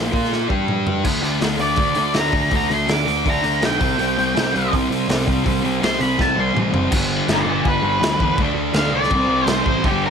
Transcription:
Already playing: A#1 A#2 F3 A#3
0.12 A#2 A#3 F4 A#4, kick, open hi-hat
0.24 snare
0.33 snare
0.48 G2 G3 D4 G4, kick
0.68 mid tom
0.87 floor tom
1.04 D2 D3 A3 D4, kick, crash
1.22 D2 D3 A3 D4, open hi-hat
1.40 D2 D3 A3 D4, snare, open hi-hat
1.58 D2 D3 A3 D4 D5, open hi-hat
1.76 D2 D3 A3 D4, kick, open hi-hat
1.95 D2 D3 A3 D4, open hi-hat
2.14 D2 D3 A3 D4 A#5, snare, open hi-hat
2.32 D3 A3 D4, kick, open hi-hat
2.50 D2 D3 A3 D4, kick, open hi-hat
2.56 A#5
2.70 D2 D3 A3 D4, open hi-hat
2.74 C6
2.87 D2 D3 A3 D4 D6, snare, open hi-hat
3.06 D2 D3 A3 D4, open hi-hat
3.25 D2 D3 A3 D4, kick, open hi-hat
3.30 A#5
3.43 D2 D3 A3 D4, open hi-hat
3.62 B1 D3 A3 D4 G5, snare, open hi-hat
3.79 C2 C3 G3 C4, kick, open hi-hat
3.98 C2 C3 G3 C4, open hi-hat
4.17 C2 C3 G3 C4, open hi-hat
4.35 C2 C3 G3 C4, snare, open hi-hat
4.53 C2 C3 G3 C4, open hi-hat
4.71 C2 C3 G3 C4, kick, open hi-hat
4.89 C2 C3 G3 C4, open hi-hat
5.09 C2 C3 G3 C4, snare, open hi-hat
5.26 C3 G3 C4, kick, open hi-hat
5.45 C2 C3 G3 C4, kick, open hi-hat
5.62 C2 C3 G3 C4, open hi-hat
5.80 C2 C3 G3 C4 C6, snare, open hi-hat
5.99 C2 C3 G3 C4 B5, open hi-hat
6.17 C2 C3 G3 C4, kick, snare
6.21 A5
6.35 C2 C3 G3 C4
6.40 C6
6.54 A1 C3 G3 C4, mid tom
6.71 F#1 C3 G3 C4, floor tom
6.90 G1 G2 D3 G3, kick, crash
7.27 G1 G2 D3, snare, crash
7.31 G3 A#4 D5
7.46 G1 F4
7.50 A#4
7.65 G1 B4, kick, crash
7.82 G1 G3
7.87 D3
8.00 D2 G2 D3, snare, crash
8.04 G3
8.18 E2 G3, kick
8.23 D3
8.37 D2 D3 A3, kick, crash
8.41 D4
8.54 D2
8.73 D2 D3 A3 F5, snare, crash
8.78 D4
8.91 C2 D5
9.03 snare
9.10 C2 C3 G3, kick, crash
9.15 C4
9.28 C2 C4
9.34 G3
9.45 C2 C3 C5, snare, crash
9.50 G3 C4
9.66 A1 C4 C5, kick
9.71 G3
9.84 G1 G2 D3 G4, kick, crash
9.88 G3
10.06 A#4

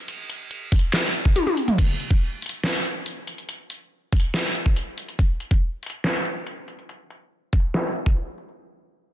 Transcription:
0.08 closed hi-hat, ride
0.30 closed hi-hat
0.51 ride
0.72 kick, closed hi-hat
0.76 closed hi-hat
0.79 closed hi-hat
0.93 snare, clap, closed hi-hat, ride
1.15 closed hi-hat
1.25 kick
1.36 closed hi-hat, high tom, ride
1.47 high tom
1.57 closed hi-hat
1.68 closed hi-hat, mid tom
1.78 kick, closed hi-hat, crash
2.00 closed hi-hat
2.11 kick
2.42 closed hi-hat
2.46 closed hi-hat
2.49 closed hi-hat
2.64 snare, closed hi-hat
2.85 closed hi-hat
3.06 closed hi-hat
3.27 closed hi-hat
3.38 closed hi-hat
3.49 closed hi-hat
3.70 closed hi-hat
4.13 kick, closed hi-hat
4.16 closed hi-hat
4.20 closed hi-hat
4.34 snare, closed hi-hat
4.55 closed hi-hat
4.66 kick
4.76 closed hi-hat
4.98 closed hi-hat
5.08 closed hi-hat
5.19 kick, closed hi-hat
5.40 closed hi-hat
5.51 kick
5.83 closed hi-hat
5.86 closed hi-hat
5.90 closed hi-hat
6.04 snare, closed hi-hat
6.25 closed hi-hat
6.47 closed hi-hat
6.68 closed hi-hat
6.79 closed hi-hat
6.89 closed hi-hat
7.10 closed hi-hat
7.53 kick, closed hi-hat
7.57 closed hi-hat
7.60 closed hi-hat
7.74 snare, closed hi-hat
7.95 closed hi-hat
8.06 kick
8.17 closed hi-hat
8.38 closed hi-hat
8.49 closed hi-hat

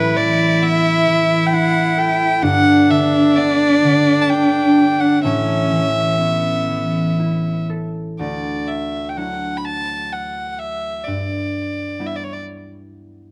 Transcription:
Already playing: A1 A2 A3 E4 B4
0.15 E3 D5
0.62 B3 E5
1.07 E3
1.46 G5
1.53 E4 F#5
1.97 A4 G5
2.42 G1 G2 D4 F#5
2.90 D3 E5
3.36 B3 D5
3.84 D3
4.22 A5
4.30 D4 G5
4.78 G4
5.00 F#5
5.23 A1 A2 C#4 E5
5.71 E3
6.12 C#4
6.18 B3 C#4
6.68 E3
7.19 E4
7.70 A4
8.19 D2 D5
8.68 E5
9.09 G5
9.17 F#3 D4 E4 F#5
9.57 B5
9.65 A5
10.13 F#5
10.52 F#5
10.59 E5
11.04 G2 D5
11.99 G3 B3 E4
12.06 E5
12.16 D5
12.24 C#5
12.33 D5

